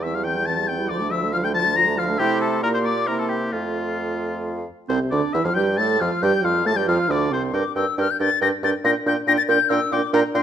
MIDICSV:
0, 0, Header, 1, 6, 480
1, 0, Start_track
1, 0, Key_signature, -1, "major"
1, 0, Tempo, 433213
1, 1002, Time_signature, 3, 2, 24, 8
1, 2919, Tempo, 449775
1, 6759, Tempo, 433213
1, 11407, End_track
2, 0, Start_track
2, 0, Title_t, "Flute"
2, 0, Program_c, 0, 73
2, 33, Note_on_c, 0, 88, 77
2, 166, Note_on_c, 0, 89, 71
2, 182, Note_off_c, 0, 88, 0
2, 272, Note_off_c, 0, 89, 0
2, 279, Note_on_c, 0, 91, 78
2, 504, Note_on_c, 0, 93, 77
2, 521, Note_off_c, 0, 91, 0
2, 743, Note_on_c, 0, 91, 83
2, 760, Note_off_c, 0, 93, 0
2, 974, Note_off_c, 0, 91, 0
2, 980, Note_on_c, 0, 86, 94
2, 1223, Note_off_c, 0, 86, 0
2, 1234, Note_on_c, 0, 88, 83
2, 1462, Note_off_c, 0, 88, 0
2, 1469, Note_on_c, 0, 89, 102
2, 1524, Note_off_c, 0, 89, 0
2, 1603, Note_on_c, 0, 91, 86
2, 1655, Note_off_c, 0, 91, 0
2, 1721, Note_on_c, 0, 93, 102
2, 1954, Note_on_c, 0, 94, 101
2, 1971, Note_off_c, 0, 93, 0
2, 2190, Note_off_c, 0, 94, 0
2, 2196, Note_on_c, 0, 89, 96
2, 2263, Note_off_c, 0, 89, 0
2, 2426, Note_on_c, 0, 79, 118
2, 2677, Note_on_c, 0, 81, 95
2, 2694, Note_off_c, 0, 79, 0
2, 2908, Note_off_c, 0, 81, 0
2, 2915, Note_on_c, 0, 82, 102
2, 3027, Note_off_c, 0, 82, 0
2, 3034, Note_on_c, 0, 84, 83
2, 3158, Note_on_c, 0, 86, 96
2, 3174, Note_off_c, 0, 84, 0
2, 3397, Note_on_c, 0, 82, 85
2, 3413, Note_off_c, 0, 86, 0
2, 3513, Note_off_c, 0, 82, 0
2, 3519, Note_on_c, 0, 81, 72
2, 3618, Note_off_c, 0, 81, 0
2, 3624, Note_on_c, 0, 79, 69
2, 3688, Note_off_c, 0, 79, 0
2, 3878, Note_on_c, 0, 77, 68
2, 5075, Note_off_c, 0, 77, 0
2, 5328, Note_on_c, 0, 84, 81
2, 5392, Note_off_c, 0, 84, 0
2, 5582, Note_on_c, 0, 86, 77
2, 5809, Note_on_c, 0, 88, 80
2, 5825, Note_off_c, 0, 86, 0
2, 5931, Note_off_c, 0, 88, 0
2, 5939, Note_on_c, 0, 89, 77
2, 6033, Note_off_c, 0, 89, 0
2, 6040, Note_on_c, 0, 91, 88
2, 6104, Note_off_c, 0, 91, 0
2, 6265, Note_on_c, 0, 93, 89
2, 6514, Note_on_c, 0, 89, 78
2, 6530, Note_off_c, 0, 93, 0
2, 6749, Note_on_c, 0, 91, 84
2, 6765, Note_off_c, 0, 89, 0
2, 6978, Note_off_c, 0, 91, 0
2, 6984, Note_on_c, 0, 89, 90
2, 7237, Note_on_c, 0, 93, 100
2, 7253, Note_off_c, 0, 89, 0
2, 7344, Note_on_c, 0, 91, 83
2, 7361, Note_off_c, 0, 93, 0
2, 7465, Note_off_c, 0, 91, 0
2, 7472, Note_on_c, 0, 89, 90
2, 7734, Note_on_c, 0, 86, 83
2, 7750, Note_off_c, 0, 89, 0
2, 7964, Note_on_c, 0, 84, 74
2, 7981, Note_off_c, 0, 86, 0
2, 8212, Note_on_c, 0, 86, 95
2, 8228, Note_off_c, 0, 84, 0
2, 8450, Note_off_c, 0, 86, 0
2, 8456, Note_on_c, 0, 88, 90
2, 8693, Note_off_c, 0, 88, 0
2, 8715, Note_on_c, 0, 89, 105
2, 8834, Note_on_c, 0, 91, 85
2, 8851, Note_off_c, 0, 89, 0
2, 8939, Note_off_c, 0, 91, 0
2, 8946, Note_on_c, 0, 93, 98
2, 9177, Note_off_c, 0, 93, 0
2, 9183, Note_on_c, 0, 94, 99
2, 9250, Note_off_c, 0, 94, 0
2, 9428, Note_on_c, 0, 93, 106
2, 9494, Note_off_c, 0, 93, 0
2, 9658, Note_on_c, 0, 94, 105
2, 9725, Note_off_c, 0, 94, 0
2, 9906, Note_on_c, 0, 91, 109
2, 9972, Note_off_c, 0, 91, 0
2, 10133, Note_on_c, 0, 94, 118
2, 10187, Note_off_c, 0, 94, 0
2, 10243, Note_on_c, 0, 93, 101
2, 10298, Note_off_c, 0, 93, 0
2, 10364, Note_on_c, 0, 91, 113
2, 10593, Note_on_c, 0, 88, 116
2, 10610, Note_off_c, 0, 91, 0
2, 10850, Note_on_c, 0, 86, 98
2, 10867, Note_off_c, 0, 88, 0
2, 11084, Note_off_c, 0, 86, 0
2, 11089, Note_on_c, 0, 82, 125
2, 11155, Note_off_c, 0, 82, 0
2, 11319, Note_on_c, 0, 84, 110
2, 11386, Note_off_c, 0, 84, 0
2, 11407, End_track
3, 0, Start_track
3, 0, Title_t, "Oboe"
3, 0, Program_c, 1, 68
3, 31, Note_on_c, 1, 76, 74
3, 160, Note_on_c, 1, 77, 64
3, 176, Note_off_c, 1, 76, 0
3, 265, Note_on_c, 1, 79, 73
3, 282, Note_off_c, 1, 77, 0
3, 510, Note_on_c, 1, 81, 69
3, 527, Note_off_c, 1, 79, 0
3, 758, Note_on_c, 1, 79, 74
3, 775, Note_off_c, 1, 81, 0
3, 991, Note_on_c, 1, 74, 80
3, 1007, Note_off_c, 1, 79, 0
3, 1232, Note_on_c, 1, 76, 79
3, 1248, Note_off_c, 1, 74, 0
3, 1469, Note_on_c, 1, 77, 88
3, 1485, Note_off_c, 1, 76, 0
3, 1594, Note_on_c, 1, 79, 79
3, 1610, Note_off_c, 1, 77, 0
3, 1702, Note_off_c, 1, 79, 0
3, 1709, Note_on_c, 1, 81, 92
3, 1954, Note_on_c, 1, 82, 99
3, 1970, Note_off_c, 1, 81, 0
3, 2201, Note_on_c, 1, 77, 99
3, 2218, Note_off_c, 1, 82, 0
3, 2428, Note_on_c, 1, 67, 105
3, 2445, Note_off_c, 1, 77, 0
3, 2661, Note_off_c, 1, 67, 0
3, 2668, Note_on_c, 1, 69, 74
3, 2910, Note_off_c, 1, 69, 0
3, 2916, Note_on_c, 1, 70, 97
3, 2970, Note_off_c, 1, 70, 0
3, 3031, Note_on_c, 1, 72, 77
3, 3086, Note_off_c, 1, 72, 0
3, 3138, Note_on_c, 1, 74, 83
3, 3385, Note_on_c, 1, 70, 75
3, 3402, Note_off_c, 1, 74, 0
3, 3511, Note_on_c, 1, 69, 65
3, 3527, Note_off_c, 1, 70, 0
3, 3623, Note_on_c, 1, 67, 67
3, 3639, Note_off_c, 1, 69, 0
3, 3864, Note_on_c, 1, 65, 61
3, 3880, Note_off_c, 1, 67, 0
3, 5093, Note_off_c, 1, 65, 0
3, 5325, Note_on_c, 1, 72, 73
3, 5435, Note_off_c, 1, 72, 0
3, 5557, Note_on_c, 1, 74, 72
3, 5796, Note_on_c, 1, 76, 78
3, 5812, Note_off_c, 1, 74, 0
3, 5915, Note_on_c, 1, 77, 72
3, 5931, Note_off_c, 1, 76, 0
3, 6022, Note_on_c, 1, 79, 82
3, 6038, Note_off_c, 1, 77, 0
3, 6274, Note_on_c, 1, 81, 76
3, 6290, Note_off_c, 1, 79, 0
3, 6525, Note_on_c, 1, 77, 84
3, 6541, Note_off_c, 1, 81, 0
3, 6757, Note_off_c, 1, 77, 0
3, 6772, Note_on_c, 1, 79, 82
3, 6998, Note_on_c, 1, 77, 76
3, 7015, Note_off_c, 1, 79, 0
3, 7237, Note_off_c, 1, 77, 0
3, 7244, Note_on_c, 1, 81, 90
3, 7353, Note_on_c, 1, 79, 77
3, 7369, Note_off_c, 1, 81, 0
3, 7474, Note_off_c, 1, 79, 0
3, 7481, Note_on_c, 1, 77, 78
3, 7727, Note_on_c, 1, 74, 84
3, 7743, Note_off_c, 1, 77, 0
3, 7969, Note_off_c, 1, 74, 0
3, 7978, Note_on_c, 1, 72, 66
3, 8086, Note_off_c, 1, 72, 0
3, 8208, Note_on_c, 1, 79, 64
3, 8318, Note_off_c, 1, 79, 0
3, 8449, Note_on_c, 1, 79, 59
3, 8559, Note_off_c, 1, 79, 0
3, 8697, Note_on_c, 1, 79, 65
3, 8805, Note_off_c, 1, 79, 0
3, 8941, Note_on_c, 1, 79, 62
3, 9048, Note_off_c, 1, 79, 0
3, 9172, Note_on_c, 1, 79, 63
3, 9281, Note_off_c, 1, 79, 0
3, 9431, Note_on_c, 1, 79, 67
3, 9536, Note_off_c, 1, 79, 0
3, 9669, Note_on_c, 1, 79, 72
3, 9774, Note_off_c, 1, 79, 0
3, 9915, Note_on_c, 1, 79, 71
3, 10018, Note_off_c, 1, 79, 0
3, 10140, Note_on_c, 1, 79, 78
3, 10245, Note_off_c, 1, 79, 0
3, 10379, Note_on_c, 1, 79, 74
3, 10484, Note_off_c, 1, 79, 0
3, 10616, Note_on_c, 1, 79, 75
3, 10721, Note_off_c, 1, 79, 0
3, 10857, Note_on_c, 1, 79, 82
3, 10960, Note_off_c, 1, 79, 0
3, 11086, Note_on_c, 1, 79, 78
3, 11191, Note_off_c, 1, 79, 0
3, 11319, Note_on_c, 1, 79, 75
3, 11407, Note_off_c, 1, 79, 0
3, 11407, End_track
4, 0, Start_track
4, 0, Title_t, "Clarinet"
4, 0, Program_c, 2, 71
4, 58, Note_on_c, 2, 60, 45
4, 167, Note_on_c, 2, 64, 49
4, 184, Note_off_c, 2, 60, 0
4, 298, Note_on_c, 2, 60, 43
4, 315, Note_off_c, 2, 64, 0
4, 410, Note_on_c, 2, 64, 39
4, 427, Note_off_c, 2, 60, 0
4, 521, Note_off_c, 2, 64, 0
4, 527, Note_on_c, 2, 60, 52
4, 656, Note_on_c, 2, 64, 52
4, 673, Note_off_c, 2, 60, 0
4, 772, Note_on_c, 2, 60, 53
4, 789, Note_off_c, 2, 64, 0
4, 880, Note_on_c, 2, 64, 53
4, 896, Note_off_c, 2, 60, 0
4, 994, Note_off_c, 2, 64, 0
4, 1001, Note_on_c, 2, 65, 61
4, 1125, Note_on_c, 2, 62, 52
4, 1141, Note_off_c, 2, 65, 0
4, 1237, Note_on_c, 2, 65, 54
4, 1254, Note_off_c, 2, 62, 0
4, 1360, Note_on_c, 2, 62, 56
4, 1377, Note_off_c, 2, 65, 0
4, 1464, Note_off_c, 2, 62, 0
4, 1471, Note_on_c, 2, 65, 58
4, 1596, Note_on_c, 2, 62, 61
4, 1612, Note_off_c, 2, 65, 0
4, 1707, Note_on_c, 2, 65, 57
4, 1724, Note_off_c, 2, 62, 0
4, 1828, Note_on_c, 2, 62, 59
4, 1845, Note_off_c, 2, 65, 0
4, 1947, Note_off_c, 2, 62, 0
4, 1953, Note_on_c, 2, 65, 62
4, 2075, Note_on_c, 2, 62, 65
4, 2091, Note_off_c, 2, 65, 0
4, 2197, Note_on_c, 2, 65, 68
4, 2214, Note_off_c, 2, 62, 0
4, 2310, Note_on_c, 2, 62, 62
4, 2327, Note_off_c, 2, 65, 0
4, 2433, Note_off_c, 2, 62, 0
4, 2443, Note_on_c, 2, 64, 83
4, 2925, Note_on_c, 2, 67, 70
4, 2941, Note_off_c, 2, 64, 0
4, 3397, Note_on_c, 2, 64, 66
4, 3413, Note_off_c, 2, 67, 0
4, 3735, Note_off_c, 2, 64, 0
4, 3878, Note_on_c, 2, 65, 53
4, 5075, Note_off_c, 2, 65, 0
4, 5325, Note_on_c, 2, 60, 77
4, 5435, Note_off_c, 2, 60, 0
4, 5572, Note_on_c, 2, 62, 66
4, 5808, Note_off_c, 2, 62, 0
4, 5812, Note_on_c, 2, 64, 75
4, 5930, Note_off_c, 2, 64, 0
4, 5940, Note_on_c, 2, 65, 68
4, 6053, Note_off_c, 2, 65, 0
4, 6065, Note_on_c, 2, 67, 74
4, 6168, Note_off_c, 2, 67, 0
4, 6301, Note_on_c, 2, 69, 86
4, 6536, Note_on_c, 2, 65, 77
4, 6552, Note_off_c, 2, 69, 0
4, 6763, Note_off_c, 2, 65, 0
4, 6774, Note_on_c, 2, 67, 87
4, 7000, Note_on_c, 2, 65, 76
4, 7016, Note_off_c, 2, 67, 0
4, 7229, Note_off_c, 2, 65, 0
4, 7235, Note_on_c, 2, 69, 81
4, 7291, Note_off_c, 2, 69, 0
4, 7363, Note_on_c, 2, 67, 79
4, 7488, Note_on_c, 2, 65, 82
4, 7505, Note_off_c, 2, 67, 0
4, 7707, Note_on_c, 2, 62, 87
4, 7724, Note_off_c, 2, 65, 0
4, 7958, Note_on_c, 2, 60, 72
4, 7975, Note_off_c, 2, 62, 0
4, 8202, Note_off_c, 2, 60, 0
4, 8209, Note_on_c, 2, 70, 69
4, 8319, Note_off_c, 2, 70, 0
4, 8455, Note_on_c, 2, 70, 55
4, 8564, Note_off_c, 2, 70, 0
4, 8700, Note_on_c, 2, 70, 66
4, 8808, Note_off_c, 2, 70, 0
4, 8936, Note_on_c, 2, 70, 62
4, 9044, Note_off_c, 2, 70, 0
4, 9170, Note_on_c, 2, 70, 71
4, 9280, Note_off_c, 2, 70, 0
4, 9418, Note_on_c, 2, 70, 66
4, 9526, Note_off_c, 2, 70, 0
4, 9660, Note_on_c, 2, 70, 78
4, 9767, Note_off_c, 2, 70, 0
4, 9904, Note_on_c, 2, 70, 62
4, 10009, Note_off_c, 2, 70, 0
4, 10133, Note_on_c, 2, 70, 73
4, 10240, Note_off_c, 2, 70, 0
4, 10364, Note_on_c, 2, 70, 72
4, 10472, Note_off_c, 2, 70, 0
4, 10601, Note_on_c, 2, 70, 78
4, 10709, Note_off_c, 2, 70, 0
4, 10842, Note_on_c, 2, 70, 72
4, 10948, Note_off_c, 2, 70, 0
4, 11080, Note_on_c, 2, 70, 82
4, 11186, Note_off_c, 2, 70, 0
4, 11321, Note_on_c, 2, 70, 75
4, 11407, Note_off_c, 2, 70, 0
4, 11407, End_track
5, 0, Start_track
5, 0, Title_t, "French horn"
5, 0, Program_c, 3, 60
5, 23, Note_on_c, 3, 52, 47
5, 158, Note_on_c, 3, 55, 45
5, 175, Note_off_c, 3, 52, 0
5, 274, Note_on_c, 3, 52, 43
5, 291, Note_off_c, 3, 55, 0
5, 400, Note_on_c, 3, 55, 39
5, 416, Note_off_c, 3, 52, 0
5, 512, Note_off_c, 3, 55, 0
5, 518, Note_on_c, 3, 52, 52
5, 644, Note_on_c, 3, 55, 45
5, 660, Note_off_c, 3, 52, 0
5, 772, Note_on_c, 3, 52, 54
5, 789, Note_off_c, 3, 55, 0
5, 873, Note_on_c, 3, 55, 52
5, 890, Note_off_c, 3, 52, 0
5, 997, Note_off_c, 3, 55, 0
5, 1001, Note_on_c, 3, 53, 59
5, 1116, Note_on_c, 3, 57, 56
5, 1133, Note_off_c, 3, 53, 0
5, 1236, Note_on_c, 3, 53, 57
5, 1253, Note_off_c, 3, 57, 0
5, 1377, Note_on_c, 3, 57, 54
5, 1393, Note_off_c, 3, 53, 0
5, 1486, Note_off_c, 3, 57, 0
5, 1498, Note_on_c, 3, 53, 66
5, 1606, Note_on_c, 3, 57, 65
5, 1622, Note_off_c, 3, 53, 0
5, 1712, Note_on_c, 3, 53, 62
5, 1729, Note_off_c, 3, 57, 0
5, 1842, Note_on_c, 3, 57, 58
5, 1859, Note_off_c, 3, 53, 0
5, 1935, Note_off_c, 3, 57, 0
5, 1941, Note_on_c, 3, 53, 60
5, 2073, Note_on_c, 3, 57, 59
5, 2090, Note_off_c, 3, 53, 0
5, 2191, Note_on_c, 3, 53, 64
5, 2207, Note_off_c, 3, 57, 0
5, 2318, Note_on_c, 3, 57, 65
5, 2335, Note_off_c, 3, 53, 0
5, 2431, Note_off_c, 3, 57, 0
5, 2438, Note_on_c, 3, 57, 74
5, 2916, Note_on_c, 3, 58, 74
5, 2932, Note_off_c, 3, 57, 0
5, 3246, Note_off_c, 3, 58, 0
5, 3384, Note_on_c, 3, 58, 62
5, 3879, Note_on_c, 3, 57, 53
5, 3895, Note_off_c, 3, 58, 0
5, 5100, Note_off_c, 3, 57, 0
5, 5333, Note_on_c, 3, 48, 75
5, 5557, Note_off_c, 3, 48, 0
5, 5585, Note_on_c, 3, 50, 69
5, 5690, Note_off_c, 3, 50, 0
5, 5817, Note_on_c, 3, 52, 86
5, 5870, Note_off_c, 3, 52, 0
5, 5926, Note_on_c, 3, 53, 76
5, 6053, Note_on_c, 3, 55, 72
5, 6069, Note_off_c, 3, 53, 0
5, 6278, Note_on_c, 3, 57, 79
5, 6294, Note_off_c, 3, 55, 0
5, 6511, Note_off_c, 3, 57, 0
5, 6517, Note_on_c, 3, 53, 77
5, 6750, Note_on_c, 3, 55, 83
5, 6766, Note_off_c, 3, 53, 0
5, 6977, Note_on_c, 3, 53, 75
5, 6994, Note_off_c, 3, 55, 0
5, 7224, Note_off_c, 3, 53, 0
5, 7231, Note_on_c, 3, 57, 96
5, 7288, Note_off_c, 3, 57, 0
5, 7340, Note_on_c, 3, 55, 76
5, 7399, Note_off_c, 3, 55, 0
5, 7460, Note_on_c, 3, 53, 77
5, 7708, Note_on_c, 3, 50, 84
5, 7724, Note_off_c, 3, 53, 0
5, 7955, Note_on_c, 3, 48, 70
5, 7971, Note_off_c, 3, 50, 0
5, 8194, Note_off_c, 3, 48, 0
5, 8201, Note_on_c, 3, 62, 65
5, 8313, Note_off_c, 3, 62, 0
5, 8450, Note_on_c, 3, 62, 58
5, 8560, Note_off_c, 3, 62, 0
5, 8693, Note_on_c, 3, 62, 68
5, 8802, Note_off_c, 3, 62, 0
5, 8943, Note_on_c, 3, 62, 67
5, 9050, Note_off_c, 3, 62, 0
5, 9184, Note_on_c, 3, 62, 63
5, 9291, Note_off_c, 3, 62, 0
5, 9437, Note_on_c, 3, 62, 67
5, 9541, Note_off_c, 3, 62, 0
5, 9672, Note_on_c, 3, 62, 74
5, 9777, Note_off_c, 3, 62, 0
5, 9896, Note_on_c, 3, 62, 72
5, 10003, Note_off_c, 3, 62, 0
5, 10140, Note_on_c, 3, 62, 80
5, 10245, Note_off_c, 3, 62, 0
5, 10374, Note_on_c, 3, 62, 70
5, 10480, Note_off_c, 3, 62, 0
5, 10611, Note_on_c, 3, 62, 83
5, 10717, Note_off_c, 3, 62, 0
5, 10848, Note_on_c, 3, 62, 76
5, 10953, Note_off_c, 3, 62, 0
5, 11082, Note_on_c, 3, 62, 84
5, 11188, Note_off_c, 3, 62, 0
5, 11324, Note_on_c, 3, 62, 79
5, 11407, Note_off_c, 3, 62, 0
5, 11407, End_track
6, 0, Start_track
6, 0, Title_t, "Bassoon"
6, 0, Program_c, 4, 70
6, 0, Note_on_c, 4, 40, 62
6, 958, Note_off_c, 4, 40, 0
6, 993, Note_on_c, 4, 38, 72
6, 2403, Note_off_c, 4, 38, 0
6, 2428, Note_on_c, 4, 48, 93
6, 2910, Note_on_c, 4, 46, 80
6, 2927, Note_off_c, 4, 48, 0
6, 3385, Note_on_c, 4, 48, 69
6, 3401, Note_off_c, 4, 46, 0
6, 3863, Note_off_c, 4, 48, 0
6, 3869, Note_on_c, 4, 41, 59
6, 5071, Note_off_c, 4, 41, 0
6, 5330, Note_on_c, 4, 36, 80
6, 5439, Note_off_c, 4, 36, 0
6, 5565, Note_on_c, 4, 38, 78
6, 5674, Note_off_c, 4, 38, 0
6, 5804, Note_on_c, 4, 40, 80
6, 5860, Note_off_c, 4, 40, 0
6, 5921, Note_on_c, 4, 41, 65
6, 5977, Note_off_c, 4, 41, 0
6, 6042, Note_on_c, 4, 43, 77
6, 6284, Note_on_c, 4, 45, 87
6, 6300, Note_off_c, 4, 43, 0
6, 6517, Note_off_c, 4, 45, 0
6, 6523, Note_on_c, 4, 41, 70
6, 6628, Note_off_c, 4, 41, 0
6, 6753, Note_on_c, 4, 43, 89
6, 6862, Note_off_c, 4, 43, 0
6, 6990, Note_on_c, 4, 41, 79
6, 7229, Note_on_c, 4, 45, 78
6, 7245, Note_off_c, 4, 41, 0
6, 7352, Note_on_c, 4, 43, 70
6, 7369, Note_off_c, 4, 45, 0
6, 7473, Note_off_c, 4, 43, 0
6, 7480, Note_on_c, 4, 41, 81
6, 7590, Note_off_c, 4, 41, 0
6, 7716, Note_on_c, 4, 38, 97
6, 7946, Note_off_c, 4, 38, 0
6, 7953, Note_on_c, 4, 36, 65
6, 8192, Note_off_c, 4, 36, 0
6, 8199, Note_on_c, 4, 43, 74
6, 8311, Note_off_c, 4, 43, 0
6, 8446, Note_on_c, 4, 43, 72
6, 8557, Note_off_c, 4, 43, 0
6, 8693, Note_on_c, 4, 43, 78
6, 8802, Note_off_c, 4, 43, 0
6, 8939, Note_on_c, 4, 43, 67
6, 9046, Note_off_c, 4, 43, 0
6, 9172, Note_on_c, 4, 43, 80
6, 9281, Note_off_c, 4, 43, 0
6, 9414, Note_on_c, 4, 43, 70
6, 9523, Note_off_c, 4, 43, 0
6, 9649, Note_on_c, 4, 46, 91
6, 9759, Note_off_c, 4, 46, 0
6, 9891, Note_on_c, 4, 46, 81
6, 9999, Note_off_c, 4, 46, 0
6, 10124, Note_on_c, 4, 46, 86
6, 10233, Note_off_c, 4, 46, 0
6, 10358, Note_on_c, 4, 46, 80
6, 10468, Note_off_c, 4, 46, 0
6, 10597, Note_on_c, 4, 46, 93
6, 10706, Note_off_c, 4, 46, 0
6, 10838, Note_on_c, 4, 46, 86
6, 10946, Note_off_c, 4, 46, 0
6, 11080, Note_on_c, 4, 46, 108
6, 11187, Note_off_c, 4, 46, 0
6, 11315, Note_on_c, 4, 46, 91
6, 11407, Note_off_c, 4, 46, 0
6, 11407, End_track
0, 0, End_of_file